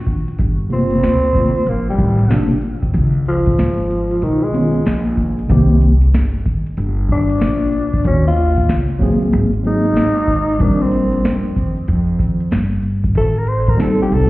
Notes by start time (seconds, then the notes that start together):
Already playing: A#1
0.07 kick, closed hi-hat
0.28 closed hi-hat
0.39 G1, kick, closed hi-hat
0.58 closed hi-hat
0.69 C3 A3 A#3 C4 F4, closed hi-hat
0.91 closed hi-hat
1.03 D2, snare, closed hi-hat
1.33 C3 A3 A#3 F4, kick, closed hi-hat
1.56 closed hi-hat
1.66 A#1 A#3, closed hi-hat
1.89 G3
1.98 A1, kick, closed hi-hat
2.19 closed hi-hat
2.28 A#1 C3 A3 A#3 D4, snare, closed hi-hat
2.62 closed hi-hat
2.83 kick, closed hi-hat
2.94 C#2, kick, closed hi-hat
3.13 closed hi-hat
3.26 F3, closed hi-hat
3.46 kick, closed hi-hat
3.58 G#1, snare, closed hi-hat
3.91 closed hi-hat
4.11 closed hi-hat
4.22 B1 D#3, closed hi-hat
4.43 G#3
4.52 D#3 B3 C#4 F4, closed hi-hat
4.75 closed hi-hat
4.86 A#1, snare, closed hi-hat
5.17 kick, closed hi-hat
5.39 closed hi-hat
5.48 C2 D#3 A#3 C4 G4, kick, closed hi-hat
5.69 closed hi-hat
5.81 closed hi-hat
6.02 closed hi-hat
6.14 G1, snare, closed hi-hat
6.46 kick, closed hi-hat
6.67 closed hi-hat
6.77 G1, closed hi-hat
7.09 D4, kick, closed hi-hat
7.29 closed hi-hat
7.41 A#1, snare, closed hi-hat
7.72 closed hi-hat
7.93 muted upright bass stroke, kick, closed hi-hat
8.03 D#2 D#3 A#3 C#4 F#4, kick, closed hi-hat
8.24 F4, closed hi-hat
8.37 closed hi-hat
8.57 kick, closed hi-hat
8.69 C#2, snare, closed hi-hat
8.89 closed hi-hat
8.99 F#3 A#3 C4 G#4, kick, closed hi-hat
9.22 closed hi-hat
9.33 G#1, closed hi-hat
9.53 closed hi-hat
9.63 F#3 A#3 C4 G#4, closed hi-hat
9.67 D#4
9.85 closed hi-hat
9.96 G#1, snare, closed hi-hat
10.17 closed hi-hat
10.27 kick, closed hi-hat
10.49 closed hi-hat
10.59 A#1 G3 C4 D4 A#4, kick, closed hi-hat
10.79 C4, closed hi-hat
10.92 closed hi-hat
11.12 closed hi-hat
11.24 F2, snare, closed hi-hat
11.56 kick, closed hi-hat
11.77 closed hi-hat
11.88 F2, closed hi-hat
12.19 kick, closed hi-hat
12.40 closed hi-hat
12.51 G2, snare, closed hi-hat
12.83 closed hi-hat
13.04 kick, closed hi-hat
13.15 A1 A4, kick, closed hi-hat
13.34 A#4, closed hi-hat
13.47 C5, closed hi-hat
13.67 A#4, kick, closed hi-hat
13.77 A#1 G3 C4 D#4 A4, snare, closed hi-hat
13.81 A4
14.02 G4
14.11 C2 A4, closed hi-hat